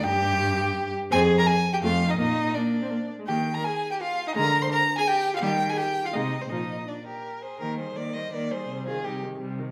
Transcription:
<<
  \new Staff \with { instrumentName = "Violin" } { \time 3/4 \key ees \major \tempo 4 = 167 g''2~ g''8 r8 | aes''8. bes''16 aes''8. g''16 f''8. ees''16 | ees''4 d''4. r8 | g''8. bes''16 aes''8. g''16 f''8. ees''16 |
bes''8. c'''16 bes''8. aes''16 g''8. f''16 | g''8. aes''16 g''8. f''16 ees''8. c''16 | ees''4 d''8 g'4 aes'8 | g'8 aes'8 bes'8 c''8 bes'8 aes'8~ |
aes'8 f'8 ees'8 r4. | }
  \new Staff \with { instrumentName = "Violin" } { \time 3/4 \key ees \major g'2~ g'8 r8 | aes'8. bes'16 aes'8. g'16 f'8. ees'16 | ees'4 d'4. r8 | g'8. bes'16 aes'8. g'16 f'8. ees'16 |
bes'8. c''16 bes'8. aes'16 g'8. f'16 | g'8. aes'16 g'8. f'16 ees'8. c'16 | ees'4 d'8 bes'4 c''8 | bes'8 c''8 d''8 ees''8 d''8 c''8~ |
c''8 aes'8 g'8 r4. | }
  \new Staff \with { instrumentName = "Viola" } { \clef bass \time 3/4 \key ees \major g'2~ g'8 r8 | c'8 r4. a8 r8 | bes8 r8 bes8. c'16 bes8. aes16 | bes8 r2 r8 |
aes8 r2 r8 | g8 r4. aes8 r8 | f8 r2 r8 | bes8 g8 bes8 g8 bes8 g8 |
g8 ees8 g8 ees8 g8 ees8 | }
  \new Staff \with { instrumentName = "Cello" } { \clef bass \time 3/4 \key ees \major g,2~ g,8 r8 | f,4 r4 f,4 | bes,4 r2 | ees4 r2 |
d4 r2 | ees4 r4 c4 | bes,4 r2 | ees4 ees4 ees4 |
c4 c4 c4 | }
>>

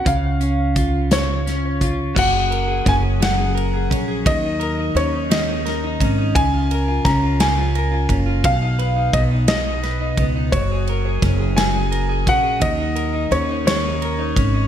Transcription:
<<
  \new Staff \with { instrumentName = "Grand piano" } { \time 6/8 \key ees \minor \tempo 4. = 57 f''4. des''4. | ges''4 aes''8 ges''4 r8 | ees''4 des''8 ees''4. | aes''4 bes''8 aes''4 r8 |
f''4 dis''8 dis''4 r8 | des''4 r8 aes''4 ges''8 | ees''4 des''8 des''4. | }
  \new Staff \with { instrumentName = "Clean electric guitar" } { \time 6/8 \key ees \minor des8 des'8 f'8 des''8 des'8 f'8 | ges16 aes'16 bes'16 aes'16 des'16 aes'16 ges16 aes'16 bes'16 aes'16 des'16 aes'16 | ees16 ees'16 bes'16 ees'16 des'16 ees'16 ees16 ees'16 bes'16 ees'16 des'16 ees'16 | des16 f'16 bes'16 f'16 des'16 f'16 des16 f'16 bes'16 f'16 des'16 f'16 |
b,16 dis'16 b'16 dis'16 b16 dis'16 b,16 dis'16 b'16 dis'16 b16 dis'16 | ges16 aes'16 bes'16 aes'16 des'16 aes'16 ges16 aes'16 bes'16 aes'16 des'16 aes'16 | ees16 ees'16 bes'16 ees'16 des'16 ees'16 ees16 ees'16 bes'16 ees'16 des'16 ees'16 | }
  \new Staff \with { instrumentName = "Upright bass" } { \clef bass \time 6/8 \key ees \minor des,2. | ges,,4 ges,,4. bes,,8 | ees,4 ees,4. aes,,8 | des,4 des,4. ges,,8 |
b,,4 b,,4. des,8 | ges,,4 ges,,4. bes,,8 | ees,4 ees,4. aes,,8 | }
  \new DrumStaff \with { instrumentName = "Drums" } \drummode { \time 6/8 <hh bd>8 hh8 <hh bd>8 <hh sn>8 <hh sn>8 <hh bd>8 | <cymc bd>8 cymr8 <bd cymr sn>8 <cymr sn>8 cymr8 <bd cymr>8 | <bd cymr>8 cymr8 cymr8 <cymr sn>8 <cymr sn>8 <bd cymr>8 | <bd cymr>8 cymr8 <bd cymr sn>8 <cymr sn>8 cymr8 <bd cymr>8 |
<bd cymr>8 cymr8 <bd cymr>8 <cymr sn>8 <cymr sn>8 <bd cymr>8 | <bd cymr>8 cymr8 <bd cymr sn>8 <cymr sn>8 cymr8 <bd cymr>8 | <bd cymr>8 cymr8 cymr8 <cymr sn>8 cymr8 <bd cymr>8 | }
>>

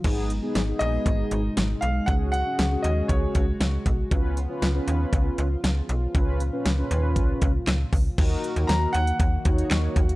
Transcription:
<<
  \new Staff \with { instrumentName = "Grand piano" } { \time 4/4 \key des \mixolydian \tempo 4 = 118 r4. ees''4. r8 f''8 | ges''8 ges''4 ees''8 des''4. r8 | r1 | r1 |
r4 bes''8 ges''2~ ges''8 | }
  \new Staff \with { instrumentName = "Analog polysynth" } { \time 4/4 \key des \mixolydian <ces' ees' aes'>8 r16 <ces' ees' aes'>16 r16 <ces' ees' aes'>4. r4 r16 | <des' ges' aes'>8 r16 <des' ges' aes'>16 r16 <des' ges' aes'>4. r4 r16 | <des' f' ces''>8 r16 <des' f' ces''>16 r16 <des' f' ces''>4. r4 r16 | <des' f' ces''>8 r16 <des' f' ces''>16 r16 <des' f' ces''>4. r4 r16 |
<ees' ges' bes'>4. r4 <ees' ges' des''>4 r8 | }
  \new Staff \with { instrumentName = "Analog synth pad" } { \time 4/4 \key des \mixolydian << { <ces ees'>1 | <des ges'>1 | <des f'>1~ | <des f'>1 |
<ees ges'>1 | } \\ { aes1~ | aes1 | ces'1 | bes,1 |
bes1 | } >> }
  \new Staff \with { instrumentName = "FM bass" } { \clef bass \time 4/4 \key des \mixolydian aes,,4 aes,,8 bes,,8 aes,,8 aes,,8 aes,,8 ces,8 | des,4 des,8 ees,8 des,8 des,8 des,8 ces,8 | des,4 des,8 ees,8 des,8 des,8 des,8 ces,8 | des,4 des,8 ees,8 des,8 des,8 des,8 des,8 |
ees,8 r16 ees,16 ees,8 ees,8 ees,8 ees,8 ees,8 ees,8 | }
  \new DrumStaff \with { instrumentName = "Drums" } \drummode { \time 4/4 <cymc hh bd>8 hh8 <hh sn>8 hh8 <hh bd>8 hh8 <hh sn>8 hh8 | <hh bd>8 hh8 <hh sn>8 hh8 <hh bd>8 <hh bd>8 <hh sn>8 <hh bd>8 | <hh bd>8 hh8 <hh sn>8 hh8 <hh bd>8 hh8 <hh sn>8 hh8 | <hh bd>8 hh8 <hh sn>8 hh8 <hh bd>8 <hh bd>8 <hc hh sn>8 <hho bd>8 |
<cymc hh bd>8 hh16 hh16 <hh sn>8 hh16 hh16 <hh bd>8 <hh bd>16 hh16 <hc hh sn>8 <hh bd>16 hh16 | }
>>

